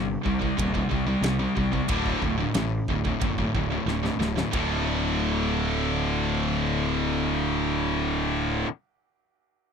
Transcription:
0.00 0.15 G1 medium
0.00 0.21 C3 medium
0.00 0.21 G3 medium
0.25 0.49 C2 medium
0.25 0.40 C3 medium
0.25 0.40 G3 medium
0.25 kick medium
0.41 0.57 C3 medium
0.41 0.57 G3 medium
0.41 kick medium
0.58 0.81 D#1 medium
0.58 0.73 C3 medium
0.58 0.73 G3 medium
0.58 kick loud
0.58 ride bell medium
0.74 0.89 C3 medium
0.74 0.89 G3 medium
0.74 kick medium
0.91 1.15 C2 medium
0.91 1.07 C3 medium
0.91 1.06 G3 medium
0.91 kick medium
1.07 1.22 C3 medium
1.07 1.23 G3 medium
1.21 1.46 C2 medium
1.21 1.38 C3 medium
1.21 1.38 G3 medium
1.21 snare loud
1.21 ride bell medium
1.39 1.55 C3 medium
1.39 1.55 G3 medium
1.56 1.80 C2 medium
1.56 1.72 C3 medium
1.56 1.72 G3 medium
1.56 kick medium
1.73 1.89 C3 medium
1.73 1.89 G3 medium
1.73 kick medium
1.88 2.13 D1 medium
1.88 2.20 D2 medium
1.88 2.20 A2 medium
1.88 2.21 D3 loud
1.88 kick loud
1.88 ride bell medium
2.06 kick medium
2.22 2.45 D1 medium
2.22 2.39 D2 medium
2.22 2.39 A2 medium
2.22 kick medium
2.40 2.56 D2 medium
2.40 2.56 A2 medium
2.54 2.79 A1 medium
2.54 2.85 D2 medium
2.54 2.86 A2 medium
2.54 snare loud
2.54 ride bell medium
2.88 3.12 D1 medium
2.88 3.06 D2 medium
2.88 3.05 A2 medium
2.88 kick medium
3.05 3.21 D2 medium
3.05 3.22 A2 medium
3.05 kick medium
3.21 3.45 F#1 medium
3.21 3.38 D2 medium
3.21 3.37 A2 medium
3.21 kick loud
3.21 ride bell medium
3.38 3.54 D2 medium
3.38 3.54 A2 medium
3.38 kick medium
3.54 3.78 D1 medium
3.54 3.71 D2 medium
3.54 3.71 A2 medium
3.54 kick medium
3.72 3.88 D2 medium
3.72 3.87 A2 medium
3.86 4.10 D1 medium
3.86 4.03 D2 medium
3.86 4.02 A2 medium
3.86 snare medium
4.03 4.19 D2 medium
4.03 4.19 A2 medium
4.03 snare medium
4.18 4.43 D1 medium
4.18 4.36 D2 medium
4.18 4.36 A2 medium
4.18 snare medium
4.37 4.52 D2 medium
4.37 4.54 A2 medium
4.37 snare medium
4.53 8.63 D1 medium
4.53 8.67 D2 medium
4.53 8.68 A2 medium
4.53 8.68 D3 medium
4.53 kick medium
4.53 ride bell medium

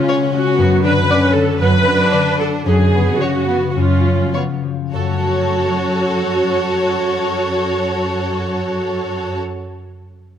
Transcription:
0.00 0.61 C#3 soft
0.00 0.32 G#3 soft
0.00 0.57 C#4 soft
0.08 3.99 B3 soft
0.08 0.16 C#5 soft
0.34 0.61 G#3 soft
0.34 0.80 F#4 medium
0.58 1.59 F#2 soft
0.58 1.01 F#2 medium
0.58 0.84 B3 soft
0.83 1.33 D3 soft
0.83 0.92 D4 medium
0.83 1.34 B4 medium
1.09 1.85 F#3 soft
1.09 1.59 C#4 medium
1.09 1.17 D5 soft
1.35 2.11 D3 soft
1.35 1.60 A4 medium
1.60 2.03 F#2 medium
1.60 2.64 F#2 soft
1.60 1.69 B3 soft
1.60 2.37 B4 medium
1.86 2.38 F#3 soft
1.86 2.64 D4 soft
2.12 2.67 D3 soft
2.12 2.20 D5 soft
2.39 2.68 F#3 soft
2.39 2.48 A4 medium
2.65 3.11 F#2 soft
2.65 3.75 F#2 soft
2.65 2.74 C#4 soft
2.65 3.19 G#4 medium
2.93 3.47 C#3 soft
2.93 3.19 B3 soft
3.20 4.04 F3 soft
3.20 3.48 C#4 soft
3.20 3.68 F#4 medium
3.20 3.28 C#5 soft
3.48 4.33 C#3 soft
3.48 3.76 B3 soft
3.69 3.76 F#4 soft
3.76 4.24 F#2 soft
3.76 4.92 F#2 soft
3.76 4.33 C#4 soft
3.76 4.34 F4 soft
4.05 4.62 F3 soft
4.34 4.96 C#3 soft
4.34 4.43 B3 soft
4.34 4.42 C#5 soft
4.63 4.96 F3 soft
4.93 9.37 F#2 soft
4.93 9.37 F#4 soft
4.93 9.38 A4 soft
4.93 9.37 C#5 soft
5.00 9.44 F#3 soft
5.07 9.51 A3 soft
5.14 9.58 C#4 soft
5.21 9.65 A4 soft

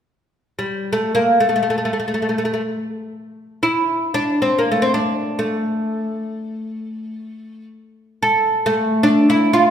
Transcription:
0.59 0.90 G3 medium
0.93 1.14 A3 medium
1.15 1.40 A#3 medium
1.40 1.47 A3 medium
1.49 1.54 A3 soft
1.56 1.61 A3 medium
1.63 1.69 A3 soft
1.70 1.77 A3 soft
1.78 1.84 A3 soft
1.85 1.92 A3 soft
1.93 1.98 A3 soft
2.00 2.07 A3 soft
2.08 2.13 A3 soft
2.14 2.21 A3 soft
2.22 2.28 A3 soft
2.29 2.36 A3 soft
2.38 2.44 A3 soft
2.45 2.52 A3 soft
2.54 2.60 A3 soft
3.63 4.14 E4 medium
4.14 4.41 D4 medium
4.42 4.58 C4 medium
4.58 4.71 A#3 medium
4.72 4.82 A3 medium
4.82 4.94 C4 medium
4.94 5.38 D4 medium
5.39 7.67 A3 medium
8.23 8.67 A4 medium
8.66 9.70 A3 medium
9.03 9.29 D4 medium
9.30 9.53 E4 medium
9.53 9.70 F4 medium

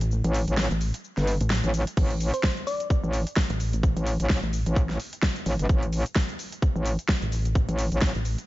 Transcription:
0.00 0.22 A1 medium
0.00 closed hi-hat medium
0.00 shaker soft
0.11 shaker soft
0.24 0.46 A1 loud
0.24 closed hi-hat medium
0.24 shaker soft
0.34 open hi-hat loud
0.34 shaker medium
0.48 0.69 A1 loud
0.48 closed hi-hat medium
0.48 shaker soft
0.57 snare loud
0.57 shaker soft
0.71 0.92 A1 loud
0.71 closed hi-hat soft
0.71 shaker soft
0.81 open hi-hat medium
0.81 shaker medium
0.94 closed hi-hat medium
0.94 shaker soft
1.04 shaker soft
1.17 1.39 G1 loud
1.17 snare soft
1.17 closed hi-hat soft
1.17 shaker soft
1.27 open hi-hat loud
1.27 shaker medium
1.41 1.62 A1 loud
1.41 closed hi-hat medium
1.41 shaker soft
1.50 snare loud
1.50 shaker soft
1.64 1.85 A1 medium
1.64 closed hi-hat medium
1.64 shaker soft
1.74 open hi-hat medium
1.74 shaker medium
1.87 closed hi-hat medium
1.87 shaker soft
1.97 2.32 A1 loud
1.97 kick loud
1.97 crash medium
1.97 shaker soft
2.10 closed hi-hat medium
2.10 shaker soft
2.20 open hi-hat loud
2.20 shaker medium
2.34 2.51 C5 medium
2.34 closed hi-hat medium
2.34 shaker soft
2.43 kick loud
2.43 snare loud
2.43 shaker soft
2.57 closed hi-hat soft
2.57 shaker soft
2.67 3.33 D5 medium
2.67 open hi-hat loud
2.67 shaker medium
2.80 closed hi-hat medium
2.80 shaker soft
2.90 kick loud
2.90 shaker soft
3.04 3.25 A1 loud
3.04 shaker soft
3.13 open hi-hat loud
3.13 shaker medium
3.27 closed hi-hat medium
3.27 shaker soft
3.37 kick loud
3.37 snare loud
3.37 shaker soft
3.50 3.94 A1 loud
3.50 closed hi-hat medium
3.50 shaker soft
3.60 open hi-hat medium
3.60 shaker medium
3.73 closed hi-hat medium
3.73 shaker soft
3.83 kick loud
3.83 shaker soft
3.97 4.18 A1 loud
3.97 closed hi-hat medium
3.97 shaker soft
4.07 open hi-hat loud
4.07 shaker medium
4.20 4.41 A1 loud
4.20 closed hi-hat medium
4.20 shaker soft
4.30 kick loud
4.30 snare loud
4.30 shaker soft
4.43 4.64 A1 loud
4.43 closed hi-hat soft
4.43 shaker soft
4.53 open hi-hat loud
4.53 shaker medium
4.66 4.98 A1 medium
4.66 closed hi-hat medium
4.66 shaker soft
4.76 kick loud
4.76 shaker soft
4.89 snare soft
4.89 shaker soft
5.00 open hi-hat loud
5.00 shaker medium
5.13 closed hi-hat medium
5.13 shaker soft
5.23 kick loud
5.23 snare loud
5.23 shaker soft
5.36 closed hi-hat medium
5.36 shaker soft
5.46 5.57 A1 loud
5.46 open hi-hat loud
5.46 shaker medium
5.59 5.68 G1 medium
5.59 closed hi-hat medium
5.59 shaker soft
5.69 6.04 A1 loud
5.69 kick loud
5.69 shaker soft
5.83 closed hi-hat medium
5.83 shaker soft
5.93 open hi-hat loud
5.93 shaker medium
6.06 closed hi-hat medium
6.06 shaker soft
6.16 kick loud
6.16 snare loud
6.16 shaker soft
6.29 closed hi-hat soft
6.29 shaker soft
6.39 open hi-hat loud
6.39 shaker medium
6.52 closed hi-hat medium
6.52 shaker soft
6.62 kick loud
6.62 shaker soft
6.76 6.97 A1 loud
6.76 shaker soft
6.86 open hi-hat loud
6.86 shaker medium
6.99 closed hi-hat medium
6.99 shaker soft
7.09 kick loud
7.09 snare loud
7.09 shaker soft
7.22 7.67 A1 medium
7.22 closed hi-hat medium
7.22 shaker soft
7.32 open hi-hat loud
7.32 shaker medium
7.45 closed hi-hat medium
7.45 shaker soft
7.55 kick loud
7.55 shaker soft
7.69 7.90 A1 loud
7.69 closed hi-hat medium
7.69 shaker soft
7.79 open hi-hat loud
7.79 shaker medium
7.92 8.13 A1 loud
7.92 closed hi-hat medium
7.92 shaker soft
8.02 kick loud
8.02 snare loud
8.02 shaker soft
8.15 8.36 A1 medium
8.15 closed hi-hat soft
8.15 shaker soft
8.25 open hi-hat medium
8.25 shaker medium
8.38 closed hi-hat medium
8.38 shaker soft

